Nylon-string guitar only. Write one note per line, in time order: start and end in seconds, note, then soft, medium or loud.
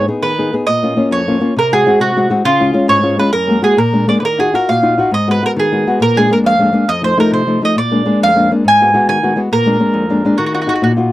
0.08 0.32 B3 soft
0.08 0.32 D#4 soft
0.08 0.32 G#4 soft
0.22 0.51 D#3 medium
0.39 0.52 B3 soft
0.39 0.52 D#4 soft
0.39 0.53 G#4 soft
0.53 0.64 B3 soft
0.53 0.64 D#4 soft
0.53 0.65 G#4 medium
0.68 0.96 A#2 soft
0.83 0.95 A#3 soft
0.83 0.96 C#4 soft
0.83 0.96 F4 soft
0.96 1.21 A#3 soft
0.96 1.21 C#4 soft
0.96 1.21 F4 soft
1.11 1.41 F2 medium
1.27 1.39 A#3 soft
1.27 1.40 C#4 soft
1.27 1.40 F4 medium
1.40 1.52 A#3 soft
1.40 1.53 C#4 soft
1.40 1.53 F4 medium
1.56 1.85 C3 medium
1.72 1.85 G#3 soft
1.72 1.85 C4 soft
1.72 1.86 F#4 medium
1.87 2.10 G#3 soft
1.87 2.10 C4 soft
1.87 2.10 F#4 medium
2.00 2.29 C3 medium
2.16 2.29 G#3 soft
2.16 2.30 C4 soft
2.16 2.30 F#4 soft
2.30 2.41 G#3 medium
2.30 2.42 C4 soft
2.30 2.42 F#4 medium
2.45 2.73 C#3 medium
2.60 2.72 G#3 soft
2.60 2.73 C#4 soft
2.60 2.73 F4 medium
2.73 2.97 G#3 medium
2.73 2.98 C#4 soft
2.73 2.98 F4 medium
2.88 3.17 G#2 medium
3.03 3.17 G#3 soft
3.03 3.18 C#4 soft
3.03 3.18 F4 medium
3.19 3.30 G#3 medium
3.19 3.30 C#4 soft
3.19 3.30 F4 medium
3.33 3.62 F#2 medium
3.47 3.60 G#3 soft
3.47 3.61 A#3 soft
3.47 3.61 F#4 soft
3.61 3.74 G#3 soft
3.61 3.74 A#3 soft
3.61 3.74 F#4 soft
3.77 4.07 A#2 medium
3.93 4.07 G#3 soft
3.93 4.06 A#3 soft
3.93 4.07 D4 soft
4.08 4.20 G#3 soft
4.08 4.20 A#3 soft
4.08 4.20 D4 soft
4.22 4.52 D#3 medium
4.38 4.52 D#4 soft
4.38 4.52 F4 soft
4.38 4.53 F#4 soft
4.53 4.78 D#4 soft
4.53 4.78 F4 soft
4.53 4.78 F#4 medium
4.69 4.98 A#2 medium
4.82 4.96 D#4 soft
4.82 4.97 F4 soft
4.82 4.98 F#4 soft
4.97 5.09 D#4 soft
4.97 5.10 F4 soft
4.97 5.10 F#4 medium
5.11 5.41 G#2 medium
5.27 5.41 G#3 soft
5.27 5.42 B3 soft
5.27 5.41 F#4 soft
5.42 5.66 G#3 soft
5.42 5.66 B3 soft
5.42 5.66 F#4 medium
5.56 5.85 D#3 medium
5.72 5.86 G#3 soft
5.72 5.86 B3 soft
5.72 5.87 F#4 soft
5.87 5.98 G#3 soft
5.87 5.98 B3 soft
5.87 5.98 F#4 medium
6.00 6.29 A#2 medium
6.16 6.29 G#3 soft
6.16 6.29 A#3 soft
6.16 6.30 D4 soft
6.30 6.54 G#3 soft
6.30 6.54 A#3 soft
6.30 6.54 D4 medium
6.44 6.72 F2 medium
6.59 6.71 G#3 soft
6.59 6.72 A#3 soft
6.59 6.72 D4 soft
6.73 6.84 G#3 medium
6.73 6.85 A#3 soft
6.73 6.85 D4 medium
6.88 7.17 F2 medium
7.02 7.16 F3 soft
7.02 7.16 A3 soft
7.02 7.17 D#4 soft
7.17 7.42 F3 soft
7.17 7.41 A3 soft
7.17 7.42 D#4 soft
7.32 7.61 C3 medium
7.47 7.60 F3 soft
7.47 7.61 A3 soft
7.47 7.62 D#4 soft
7.61 7.73 F3 soft
7.61 7.74 A3 soft
7.61 7.74 D#4 soft
7.75 8.05 A#2 soft
7.91 8.04 G#3 soft
7.91 8.04 A#3 soft
7.91 8.05 D4 soft
8.06 8.30 G#3 soft
8.06 8.30 A#3 soft
8.06 8.31 D4 soft
8.23 8.51 F2 medium
8.35 8.50 G#3 soft
8.35 8.50 A#3 soft
8.35 8.51 D4 soft
8.51 8.63 G#3 soft
8.51 8.63 A#3 soft
8.51 8.63 D4 soft
8.65 8.93 G#2 soft
8.81 8.93 G#3 soft
8.81 8.92 B3 soft
8.81 8.93 F#4 soft
8.94 9.17 G#3 soft
8.94 9.17 B3 soft
8.94 9.17 F#4 medium
9.09 9.37 D#3 medium
9.23 9.35 G#3 soft
9.23 9.35 B3 soft
9.23 9.36 F#4 medium
9.36 9.48 G#3 soft
9.36 9.48 B3 soft
9.36 9.48 F#4 soft
9.52 9.80 A#2 soft
9.66 9.79 G#3 soft
9.66 9.79 A#3 soft
9.66 9.79 D4 soft
9.80 10.03 G#3 soft
9.80 10.04 A#3 soft
9.80 10.04 D4 soft
9.94 10.22 F2 medium
10.10 10.24 G#3 soft
10.10 10.24 A#3 soft
10.10 10.25 D4 soft
10.25 10.36 G#3 soft
10.25 10.36 A#3 soft
10.25 10.36 D4 medium
10.39 10.67 D#3 medium
10.54 10.66 D#4 soft
10.54 10.66 F4 soft
10.54 10.66 F#4 soft
10.67 10.92 D#4 soft
10.67 10.92 F4 soft
10.67 10.92 F#4 soft
10.82 11.11 A#2 medium
10.97 11.11 D#4 soft
10.97 11.11 F4 soft
10.97 11.12 F#4 soft